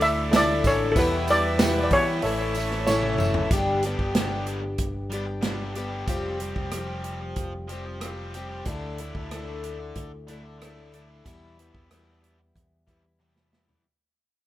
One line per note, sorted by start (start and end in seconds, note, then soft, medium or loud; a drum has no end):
0.00 0.61 D2 loud
0.00 0.29 D3 medium
0.00 0.30 A3 medium
0.00 0.31 D4 medium
0.00 0.15 E4 medium
0.00 0.32 E4 medium
0.00 0.15 A4 medium
0.00 0.94 A4 medium
0.00 0.15 D5 medium
0.00 0.95 D5 medium
0.00 3.47 E5 medium
0.00 0.34 E5 loud
0.00 0.95 D6 medium
0.00 open hi-hat medium
0.00 tambourine medium
0.05 0.33 A3 soft
0.30 0.61 D3 medium
0.30 0.48 A3 medium
0.30 0.46 D4 loud
0.30 0.78 E4 medium
0.30 0.45 E4 medium
0.30 0.78 A4 medium
0.30 0.78 D5 medium
0.30 snare loud
0.30 open hi-hat medium
0.30 tambourine loud
0.36 0.64 D5 loud
0.46 0.62 A3 medium
0.46 0.63 D4 medium
0.46 0.64 E4 medium
0.62 0.93 A1 medium
0.62 0.93 D3 medium
0.62 0.94 A3 medium
0.62 0.94 D4 medium
0.62 0.95 E4 medium
0.62 kick medium
0.62 open hi-hat medium
0.62 tambourine medium
0.67 0.92 C#5 medium
0.92 1.57 E2 loud
0.92 1.87 E2 loud
0.92 1.57 B2 medium
0.92 1.24 E3 medium
0.92 1.42 G4 medium
0.92 0.98 A4 medium
0.92 open hi-hat medium
0.96 1.26 G3 loud
0.96 1.26 B3 loud
0.96 1.42 E4 medium
0.96 1.27 E4 loud
0.96 1.42 B4 medium
0.96 2.22 B4 medium
0.96 1.27 B4 medium
0.96 2.22 G5 medium
0.96 2.22 E6 medium
0.96 kick loud
0.96 tambourine medium
1.25 1.58 E3 medium
1.25 1.59 G3 medium
1.25 1.59 B3 medium
1.25 1.60 E4 medium
1.25 open hi-hat medium
1.25 tambourine medium
1.30 1.60 E3 soft
1.30 1.61 G3 soft
1.30 1.82 D5 loud
1.58 2.07 E2 medium
1.58 2.07 B2 loud
1.58 1.76 E3 loud
1.58 1.75 G3 loud
1.58 1.74 B3 loud
1.58 2.05 E4 medium
1.58 1.72 E4 loud
1.58 2.05 G4 medium
1.58 2.05 B4 medium
1.58 snare loud
1.58 open hi-hat medium
1.58 tambourine loud
1.74 1.90 E3 medium
1.74 1.90 G3 medium
1.74 1.91 B3 medium
1.74 1.91 E4 medium
1.84 1.91 D5 medium
1.91 2.20 E3 medium
1.91 2.25 B3 medium
1.91 2.24 E4 medium
1.91 3.16 C#5 medium
1.91 muted overdriven electric guitar stroke soft
1.91 kick medium
1.91 open hi-hat medium
1.95 2.23 E3 medium
1.95 2.25 G3 medium
2.07 2.22 E3 medium
2.07 2.22 G3 medium
2.07 2.21 B3 medium
2.07 2.21 E4 medium
2.22 3.15 A1 loud
2.22 2.71 A2 medium
2.22 2.53 E3 medium
2.22 2.41 A3 loud
2.22 2.39 C#4 medium
2.22 2.69 E4 medium
2.22 2.38 E4 loud
2.22 2.69 A4 medium
2.22 2.69 C#5 medium
2.22 3.50 C#5 medium
2.22 3.50 A5 medium
2.22 3.50 E6 medium
2.22 open hi-hat medium
2.39 2.54 A3 medium
2.39 2.56 C#4 medium
2.39 2.57 E4 medium
2.54 2.86 E3 medium
2.54 2.87 A3 medium
2.54 2.87 C#4 medium
2.54 2.88 E4 medium
2.54 open hi-hat medium
2.54 tambourine medium
2.60 2.89 A3 soft
2.71 snare soft
2.86 3.35 A2 medium
2.86 3.17 E3 medium
2.86 3.04 A3 loud
2.86 3.02 C#4 loud
2.86 3.33 E4 medium
2.86 3.02 E4 loud
2.86 3.33 A4 medium
2.86 3.33 C#5 loud
2.86 snare medium
2.86 tambourine loud
3.03 3.18 A3 medium
3.03 3.19 C#4 medium
3.03 3.20 E4 medium
3.03 high tom medium
3.18 3.48 F#1 medium
3.18 3.49 E3 medium
3.18 3.49 A3 medium
3.18 3.50 C#4 medium
3.18 3.50 E4 medium
3.18 mid tom medium
3.18 tambourine medium
3.34 floor tom loud
3.50 3.95 G1 medium
3.50 4.12 G2 loud
3.50 4.13 D3 medium
3.50 4.00 G3 medium
3.50 3.99 B3 medium
3.50 3.98 D4 medium
3.50 3.97 G4 medium
3.50 kick loud
3.50 closed hi-hat medium
3.82 4.17 B3 medium
3.82 4.16 D4 medium
3.82 4.16 G4 medium
3.82 closed hi-hat medium
3.87 4.15 G3 soft
3.98 4.75 G1 medium
3.98 4.14 G3 medium
3.98 4.15 B3 medium
3.98 4.15 D4 medium
3.98 4.16 G4 medium
3.98 kick medium
4.13 4.62 G2 medium
4.13 4.63 D3 loud
4.13 4.32 G3 loud
4.13 4.30 B3 loud
4.13 4.29 D4 medium
4.13 4.29 G4 loud
4.13 snare loud
4.13 closed hi-hat medium
4.29 4.45 G3 medium
4.29 4.45 B3 medium
4.29 4.46 D4 medium
4.29 4.48 G4 medium
4.46 4.61 G3 medium
4.46 4.61 B3 medium
4.46 4.61 D4 medium
4.46 4.60 G4 medium
4.46 closed hi-hat medium
4.61 muted overdriven electric guitar stroke medium
4.78 6.03 G1 medium
4.78 kick medium
4.78 closed hi-hat medium
5.10 5.26 G3 medium
5.10 5.26 B3 medium
5.10 5.25 D4 medium
5.10 5.25 G4 medium
5.10 closed hi-hat medium
5.15 5.43 G3 soft
5.26 muted overdriven electric guitar stroke soft
5.41 6.05 G2 loud
5.41 6.05 D3 medium
5.41 5.72 G3 loud
5.41 5.73 B3 loud
5.41 5.74 D4 loud
5.41 5.75 G4 medium
5.41 snare loud
5.41 closed hi-hat medium
5.73 5.91 G3 medium
5.73 5.90 B3 medium
5.73 5.89 D4 medium
5.73 5.88 G4 medium
5.73 closed hi-hat medium
5.79 6.07 G3 medium
5.89 6.05 G3 medium
5.89 6.05 B3 medium
5.89 6.05 D4 medium
5.89 6.04 G4 medium
6.06 6.52 F1 loud
6.06 6.69 F3 medium
6.06 6.57 G3 loud
6.06 6.55 C4 loud
6.06 6.54 G4 medium
6.06 kick loud
6.06 closed hi-hat medium
6.40 6.72 G3 soft
6.40 6.72 C4 medium
6.40 6.72 G4 medium
6.40 closed hi-hat medium
6.55 7.32 F1 medium
6.55 6.70 G3 medium
6.55 6.72 C4 medium
6.55 6.73 G4 medium
6.55 kick medium
6.71 7.02 F3 medium
6.71 6.90 G3 medium
6.71 6.88 C4 loud
6.71 6.87 G4 loud
6.71 cross-stick loud
6.71 closed hi-hat medium
6.88 7.04 G3 medium
6.88 7.04 C4 medium
6.88 7.05 G4 medium
7.03 7.52 F3 medium
7.03 7.21 G3 medium
7.03 7.20 C4 medium
7.03 7.20 G4 medium
7.03 closed hi-hat medium
7.21 muted overdriven electric guitar stroke soft
7.36 8.62 F1 medium
7.36 kick medium
7.36 closed hi-hat medium
7.68 7.99 F3 medium
7.68 7.86 G3 medium
7.68 7.85 C4 medium
7.68 7.85 G4 medium
7.68 closed hi-hat medium
7.86 muted overdriven electric guitar stroke soft
8.01 8.32 F3 medium
8.01 8.33 G3 medium
8.01 8.34 C4 loud
8.01 8.35 G4 loud
8.01 cross-stick loud
8.01 closed hi-hat medium
8.33 8.63 F3 medium
8.33 8.51 G3 medium
8.33 8.50 C4 medium
8.33 8.48 G4 medium
8.33 closed hi-hat medium
8.49 8.65 G3 medium
8.49 8.64 C4 medium
8.49 8.64 G4 medium
8.65 9.10 D2 medium
8.65 9.28 D3 medium
8.65 9.16 A3 medium
8.65 9.15 D4 medium
8.65 9.14 E4 loud
8.65 kick loud
8.65 closed hi-hat medium
8.98 9.31 A3 soft
8.98 9.32 D4 medium
8.98 9.31 E4 medium
8.98 closed hi-hat medium
9.14 9.91 D2 medium
9.14 9.30 A3 medium
9.14 9.31 D4 medium
9.14 9.32 E4 medium
9.14 kick medium
9.29 9.61 D3 medium
9.29 9.48 A3 medium
9.29 9.47 D4 loud
9.29 9.46 E4 loud
9.29 cross-stick loud
9.29 closed hi-hat medium
9.46 9.62 A3 medium
9.46 9.63 D4 medium
9.46 9.65 E4 medium
9.62 10.11 D3 medium
9.62 9.79 A3 medium
9.62 9.79 D4 medium
9.62 9.79 E4 medium
9.62 closed hi-hat medium
9.79 muted overdriven electric guitar stroke medium
9.95 11.21 D2 medium
9.95 kick medium
9.95 closed hi-hat medium
10.27 10.58 D3 medium
10.27 10.43 A3 medium
10.27 10.43 D4 medium
10.27 10.43 E4 medium
10.27 closed hi-hat medium
10.44 muted overdriven electric guitar stroke soft
10.59 10.91 D3 medium
10.59 10.93 A3 medium
10.59 10.94 D4 medium
10.59 10.95 E4 loud
10.59 cross-stick medium
10.59 closed hi-hat medium
10.93 11.23 D3 medium
10.93 11.10 A3 medium
10.93 11.09 D4 medium
10.93 11.08 E4 medium
10.93 closed hi-hat medium
11.08 11.24 A3 medium
11.08 11.23 D4 medium
11.08 11.26 E4 medium
11.23 11.88 E2 medium
11.23 11.70 E2 medium
11.23 11.89 B2 medium
11.23 11.74 E3 medium
11.23 11.73 G3 medium
11.23 11.73 B3 medium
11.23 11.71 E4 loud
11.23 kick loud
11.23 closed hi-hat medium
11.59 11.90 E3 soft
11.59 11.91 G3 soft
11.59 11.91 B3 medium
11.59 11.90 E4 medium
11.59 closed hi-hat medium
11.73 12.51 E2 medium
11.73 11.89 E3 medium
11.73 11.90 G3 medium
11.73 11.91 B3 medium
11.73 11.91 E4 medium
11.73 kick medium
11.89 12.38 E2 medium
11.89 12.38 B2 loud
11.89 12.07 E3 medium
11.89 12.06 G3 loud
11.89 12.05 B3 medium
11.89 12.04 E4 loud
11.89 cross-stick loud
11.89 closed hi-hat medium
12.05 12.20 E3 medium
12.05 12.20 G3 medium
12.05 12.22 B3 medium
12.05 12.23 E4 medium
12.21 12.38 E3 medium
12.21 12.39 G3 medium
12.21 12.38 B3 medium
12.21 12.38 E4 medium
12.21 closed hi-hat medium
12.39 muted overdriven electric guitar stroke soft
12.55 13.81 E2 medium
12.55 kick medium
12.55 closed hi-hat medium
12.87 13.03 E3 medium
12.87 13.02 G3 medium
12.87 13.03 B3 medium
12.87 13.02 E4 medium
12.87 kick medium
12.87 closed hi-hat soft
13.03 muted overdriven electric guitar stroke soft
13.19 13.82 E2 medium
13.19 13.83 B2 medium
13.19 13.50 E3 medium
13.19 13.50 G3 medium
13.19 13.51 B3 medium
13.19 13.52 E4 loud
13.19 high tom soft
13.36 snare medium
13.51 13.69 E3 medium
13.51 13.68 G3 medium
13.51 13.67 B3 medium
13.51 13.66 E4 medium
13.51 snare medium
13.67 13.83 E3 medium
13.67 13.83 G3 medium
13.67 13.82 B3 medium
13.67 13.82 E4 medium
13.67 floor tom medium